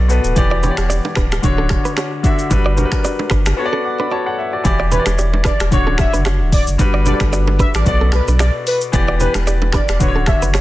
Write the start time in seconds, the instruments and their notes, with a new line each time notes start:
Already playing: sub bass B1, grand piano B2 B3 A4 D5
0.08 grand piano B2 B3 A4 B4, shaker
0.24 sub bass D1, shaker
0.35 sub bass E1, grand piano E3 B3 G4 D5, kick, low conga, shaker
0.51 clean electric guitar F#4 D5
0.62 grand piano E3 B3 G4 C#5, clean electric guitar D4 B4, low conga, shaker
0.71 grand piano D5
0.77 sub bass E1, finger snap, cross-stick, shaker
0.90 clean electric guitar G4 D5, high bongo, shaker
1.05 low bongo
1.15 sub bass D1, clean electric guitar D4 B4, finger snap, kick, cross-stick, shaker
1.32 finger snap, cross-stick, high bongo, shaker
1.42 sub bass D1, grand piano D3 D4 F#4 C#5, kick, low conga, shaker
1.58 clean electric guitar C#4 A4
1.69 finger snap, kick, cross-stick, low bongo, shaker
1.85 clean electric guitar D4 B4, shaker
1.97 clean electric guitar F#4 C#5, finger snap, cross-stick, high bongo, shaker
2.23 grand piano D3 D4 F#4 E5, kick, shaker
2.39 shaker
2.50 sub bass G1, grand piano G3 D4 F#4 B4, kick, low conga, shaker
2.66 clean electric guitar F#4 D5
2.76 grand piano G3 D4 F#4 A#4, clean electric guitar D4 B4, low conga, shaker
2.85 grand piano B4
2.92 finger snap, kick, cross-stick, shaker
3.04 clean electric guitar F#4 D5, high bongo, shaker
3.19 low bongo
3.30 sub bass G1, clean electric guitar D4 B4, finger snap, kick, cross-stick, shaker
3.46 finger snap, cross-stick, high bongo, shaker
3.57 grand piano B3 F#4 A4 C#5
3.65 grand piano D5
3.73 clean electric guitar C#4 A4
3.85 grand piano F#5 D6
4.00 clean electric guitar D4 B4, grand piano D5 B5
4.12 clean electric guitar F#4 D5, grand piano C#5 A5
4.26 grand piano A4 F#5
4.38 grand piano E5
4.53 grand piano F#4 D5
4.64 sub bass E1, grand piano E3 E4 G4 D5, kick, low conga, shaker
4.80 clean electric guitar F#4 D5
4.90 grand piano E3 E4 G4 C#5, clean electric guitar D4 B4, soft synth lead B4, low conga, shaker
4.99 grand piano D5
5.06 sub bass E1, finger snap, cross-stick, low bongo, shaker
5.19 clean electric guitar G4 D5, high bongo, shaker
5.33 low bongo
5.44 clean electric guitar D4 B4, soft synth lead D5, finger snap, kick, cross-stick, high bongo, shaker
5.60 sub bass E1, finger snap, cross-stick, shaker
5.71 sub bass D1, grand piano D3 D4 F#4 C#5, soft synth lead C#5, kick, low conga, shaker
5.87 clean electric guitar C#4 A4
5.98 soft synth lead E5, finger snap, kick, cross-stick, low bongo, shaker
6.13 sub bass F#1, clean electric guitar D4 B4, shaker
6.25 clean electric guitar F#4 C#5, finger snap, cross-stick, high bongo, shaker
6.40 sub bass D1
6.52 soft synth lead D5, kick, open hi-hat, shaker
6.67 sub bass F#1, shaker
6.78 sub bass G1, grand piano G3 D4 F#4 B4, kick, low conga, shaker
6.94 clean electric guitar F#4 D5
7.05 grand piano G3 D4 F#4 A4, clean electric guitar D4 B4, soft synth lead D5, low conga, shaker
7.14 grand piano B4
7.20 sub bass G1, finger snap, kick, cross-stick, low bongo, shaker
7.33 clean electric guitar F#4 D5, high bongo, shaker
7.47 low bongo
7.59 clean electric guitar D4 B4, soft synth lead E5, kick, high bongo, shaker
7.74 sub bass A1, soft synth lead D5, finger snap, cross-stick, shaker
7.85 sub bass B1, grand piano B2 B3 A4 D5, soft synth lead D5, kick, low conga, shaker
8.01 clean electric guitar C#4 A4
8.12 soft synth lead B4, finger snap, cross-stick, low bongo, shaker
8.28 sub bass B1, clean electric guitar D4 B4, shaker
8.39 clean electric guitar F#4 D5, soft synth lead D5, finger snap, cross-stick, high bongo, shaker
8.67 soft synth lead B4, open hi-hat, shaker
8.81 shaker
8.92 sub bass E1, grand piano E3 B3 G4 D5, kick, low conga, shaker
9.08 clean electric guitar F#4 D5
9.19 grand piano E3 B3 G4 B4, clean electric guitar D4 B4, soft synth lead B4, low conga, shaker
9.34 sub bass E1, finger snap, cross-stick, low bongo, shaker
9.47 clean electric guitar G4 D5, high bongo, shaker
9.62 low bongo
9.72 clean electric guitar D4 B4, soft synth lead D5, finger snap, kick, cross-stick, high bongo, shaker
9.89 sub bass E1, finger snap, cross-stick, shaker
9.99 sub bass D1, grand piano D3 D4 F#4 B4, soft synth lead C#5, kick, low conga, shaker
10.08 grand piano C#5
10.16 clean electric guitar C#4 A4
10.26 soft synth lead E5, finger snap, kick, cross-stick, low bongo, shaker
10.42 sub bass F#1, clean electric guitar D4 B4, shaker
10.54 clean electric guitar F#4 C#5, finger snap, cross-stick, high bongo, shaker